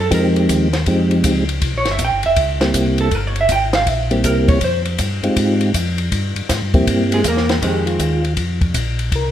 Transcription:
Already playing: tonewheel organ F#2
0.00 hollow-body jazz guitar A4
0.11 tonewheel organ F2 F3 G#3 C4 D#4 G4, hollow-body jazz guitar A#4, kick, ride
0.36 ride
0.49 tonewheel organ D#2, kick, hi-hat pedal, ride
0.73 snare, ride
0.86 tonewheel organ F2 F3 G#3 C4 D#4 G4, kick, ride
1.11 ride
1.24 tonewheel organ C#2, kick, hi-hat pedal, ride
1.49 ride
1.62 tonewheel organ C2, kick, ride
1.74 tonewheel organ A#1, hollow-body jazz guitar C#5
1.85 tonewheel organ G1, snare, ride
1.91 hollow-body jazz guitar E5
1.99 tonewheel organ A#1, kick, hi-hat pedal, ride
2.05 hollow-body jazz guitar G5
2.12 tonewheel organ G1
2.23 tonewheel organ E1, hollow-body jazz guitar E5, ride
2.36 tonewheel organ C#2, kick, ride
2.61 tonewheel organ G3 A#3 C4 E4 G4, snare, ride
2.74 tonewheel organ C2, kick, hi-hat pedal, ride
2.98 hollow-body jazz guitar A4, ride
3.11 tonewheel organ G1, hollow-body jazz guitar A#4, kick, ride
3.27 hollow-body jazz guitar C#5
3.36 ride
3.41 hollow-body jazz guitar E5
3.49 tonewheel organ G#1, hollow-body jazz guitar G5, kick, hi-hat pedal, ride
3.73 hollow-body jazz guitar F5, snare, ride
3.86 tonewheel organ A#1, hollow-body jazz guitar E5, kick, ride
4.11 tonewheel organ G3 A#3 C4 E4 G4, hollow-body jazz guitar G4, ride
4.24 tonewheel organ C2, hollow-body jazz guitar A#4, kick, hi-hat pedal, ride
4.48 hollow-body jazz guitar C#5, kick, ride
4.61 tonewheel organ F2, hollow-body jazz guitar C5, kick, ride
4.85 ride
4.98 tonewheel organ G2, kick, hi-hat pedal, ride
5.22 tonewheel organ G2 G#3 C4 D#4 F4 G4, ride
5.36 tonewheel organ G#2, kick, ride
5.61 ride
5.74 tonewheel organ F2, kick, hi-hat pedal, ride
5.98 ride
6.11 tonewheel organ G2, kick, ride
6.35 tonewheel organ G2, ride
6.49 tonewheel organ G#2, kick, snare, hi-hat pedal, ride
6.62 tonewheel organ G2
6.74 tonewheel organ F2 G3 A#3 C4 E4 G4, kick, ride
6.87 tonewheel organ G2, kick, ride
7.12 hollow-body jazz guitar G#3 G#4, ride
7.24 tonewheel organ E2, kick, hi-hat pedal, ride
7.28 hollow-body jazz guitar A#3 A#4
7.37 snare
7.49 snare, ride
7.62 tonewheel organ F2 G4, hollow-body jazz guitar D#3 G#3 C4, kick, ride
7.86 tonewheel organ F4, ride
7.99 tonewheel organ D#2, kick, hi-hat pedal, ride
8.24 ride
8.36 tonewheel organ F2, kick, ride
8.61 kick, ride
8.74 tonewheel organ A#1, kick, hi-hat pedal, ride
8.99 ride
9.12 tonewheel organ C2 A#4, kick, ride

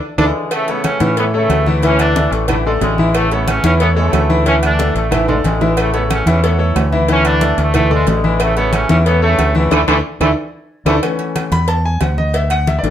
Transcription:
0.18 fingered electric bass D2, trombone section D3 E3 G#3, trombone D4, grand piano E4 A4 D5, cowbell, high conga, high timbale, claves
0.51 trombone section C#3 E3 A3, cowbell, high conga, low agogo, claves
0.68 grand piano A3 A4 C#5, trombone section B3, high conga, low agogo
0.84 trombone section C#4, cowbell, high conga, low timbale, low agogo, claves
1.00 fingered electric bass A2, grand piano E3 E4 E5, trombone section C#4, cowbell, high conga, low agogo
1.17 trombone section E3 B3, grand piano A3 A4 C#5, cowbell, high conga
1.34 trombone section C#3 E3 A3, grand piano A3 A4 C#5, high conga
1.49 fingered electric bass D2, cowbell, high conga, low timbale, low agogo, claves
1.66 grand piano E3 E4 E5, high conga
1.83 grand piano E3 E4 E5, trombone section E3 A3 C#4, cowbell, high conga, low agogo
1.99 trombone section A3 D4, cowbell, high conga, low agogo, claves
2.16 grand piano A3 A4 D5, cowbell, high conga, low timbale
2.31 fingered electric bass A1, trombone section A3, cowbell, high conga
2.48 trombone section D3 E3 A3, grand piano E3 E4 E5, cowbell, high conga, low conga, low agogo, claves
2.65 trombone section G#3, grand piano A3 A4 D5, high conga
2.81 fingered electric bass A1, trombone section D3 E3 G#3, cowbell, high conga, low timbale, low agogo
2.98 grand piano E3 E4 E5, high conga
3.14 trombone section C#3 E3 A3, cowbell, low agogo, claves
3.31 grand piano A3 A4 C#5, trombone section B3, high conga, low agogo
3.47 trombone section C#4, cowbell, high conga, low timbale, low agogo, claves
3.63 fingered electric bass E2, grand piano E3 E4 E5, trombone section C#4, cowbell, high conga, low agogo
3.80 trombone section E3 B3, grand piano A3 A4 C#5, cowbell, high conga
3.96 trombone section C#3 E3 A3, grand piano A3 A4 C#5, high conga
4.13 fingered electric bass D2, cowbell, high conga, low timbale, low agogo, claves
4.29 grand piano E3 E4 E5, high conga
4.45 grand piano E3 E4 E5, trombone section E3 A3 C#4, cowbell, low agogo
4.63 trombone section A3 D4, cowbell, high conga, low agogo, claves
4.78 grand piano A3 A4 D5, cowbell, high conga, low timbale
4.95 fingered electric bass A1, trombone section A3, cowbell, high conga
5.11 trombone section D3 E3 A3, grand piano E3 E4 E5, cowbell, high conga, low conga, high timbale, low agogo, claves
5.28 trombone section G#3, grand piano A3 A4 D5, high conga, low conga, high timbale
5.44 fingered electric bass A1, trombone section D3 E3 G#3, cowbell, high conga, low agogo
5.61 grand piano E3 E4 E5, high conga, low timbale
5.77 trombone section C#3 E3 A3, cowbell, high conga, low agogo, claves
5.94 grand piano A3 A4 C#5, trombone section B3, high conga, low agogo
6.10 trombone section C#4, cowbell, high conga, low timbale, low agogo, claves
6.26 fingered electric bass E2, grand piano E3 E4 E5, trombone section C#4, cowbell, high conga, low agogo
6.43 trombone section E3 B3, grand piano A3 A4 C#5, cowbell, high conga
6.59 grand piano A3 A4 C#5, high conga
6.76 fingered electric bass D2, cowbell, high conga, low timbale, low agogo, claves
6.92 grand piano E3 E4 E5, high conga
7.08 grand piano E3 E4 E5, trombone section E3 A3 C#4, cowbell, high conga, low agogo
7.25 trombone section A3 D4, cowbell, high conga, low agogo, claves
7.41 grand piano A3 A4 D5, cowbell, high conga, low timbale
7.58 fingered electric bass D2, trombone section A3, cowbell, high conga
7.74 trombone section D3 E3 A3, grand piano E3 E4 E5, cowbell, high conga, low conga, low agogo, claves
7.90 trombone section G#3, grand piano A3 A4 D5, high conga, low conga
8.07 fingered electric bass A1, trombone section D3 E3 G#3, cowbell, high conga, low timbale, low agogo
8.24 grand piano E3 E4 E5, high conga
8.40 trombone section C#3 E3 A3, cowbell, high conga, low agogo, claves
8.56 grand piano A3 A4 C#5, trombone section B3, high conga, low agogo
8.73 trombone section C#4, cowbell, high conga, low timbale, low agogo, claves
8.89 fingered electric bass E2, grand piano E3 E4 E5, trombone section C#4, cowbell, high conga, low agogo
9.05 trombone section E3 B3, grand piano A3 A4 C#5, cowbell, high conga
9.22 trombone section C#3 E3 A3, grand piano A3 A4 C#5, high conga
9.39 fingered electric bass D2, cowbell, high conga, low timbale, low agogo, claves
9.55 trombone section D3 E3 A3, grand piano E3 E4 E5, high conga
9.71 fingered electric bass D2, trombone section D3 E3 A3, grand piano D4 E4 A4, cowbell, high conga, high timbale, claves
9.88 fingered electric bass D2, trombone section D3 E3 A3, grand piano D4 E4 A4, cowbell, high conga, high timbale, claves
10.20 fingered electric bass D2, trombone section D3 E3 A3, grand piano D4 E4 A4, cowbell, high conga, high timbale, claves
10.86 fingered electric bass D2, trombone section D3 E3 A3, grand piano D4 E4 A4, cowbell, high conga, high timbale, claves
11.03 grand piano E3 A3 C#4, cowbell, high conga, low agogo, claves
11.19 high conga, low agogo
11.36 cowbell, high conga, low timbale, low agogo, claves
11.51 fingered electric bass E2, grand piano B5, cowbell, high conga, low agogo
11.68 grand piano A5, cowbell, high conga
11.85 grand piano G#5, high conga
12.01 fingered electric bass D2, grand piano F#5, cowbell, high conga, low timbale, low agogo, claves
12.18 grand piano D#5, high conga
12.34 grand piano E5, cowbell, high conga, low agogo
12.50 grand piano F#5, cowbell, high conga, low agogo, claves
12.67 grand piano E5, cowbell, high conga, low timbale
12.79 grand piano D5
12.83 fingered electric bass A1, grand piano E3 A3 D4, cowbell, high conga

